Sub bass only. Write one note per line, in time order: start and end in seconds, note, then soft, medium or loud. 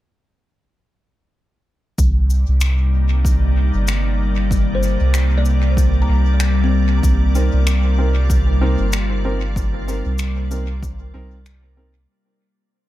1.98 2.45 C2 medium
2.48 3.71 C2 medium
3.75 4.97 G1 medium
5.01 6.06 C2 loud
6.09 7.01 C2 loud
7.03 7.50 C2 medium
7.53 8.76 C2 loud
8.80 10.03 G1 medium
10.06 11.12 C2 loud
11.15 12.07 C2 loud